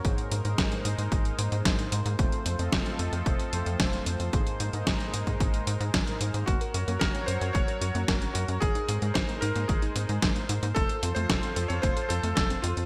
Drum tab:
HH |xxxxxxxxxxxxxxxx|xxxxxxxxxxxxxxxx|xxxxxxxxxxxxxxxx|xxxxxxxxxxxxxxxx|
SD |----o-------o---|----o-------o---|----o-------o---|----o-------o---|
BD |o---o---o---o---|o---o---o---o---|o---o--oo---o---|o---o---o---o---|

HH |xxxxxxxxxxxxxxxx|xxxxxxxxxxxxxxxx|
SD |----o-------o---|----o-------o---|
BD |o---o---o---o---|o---o---o---o---|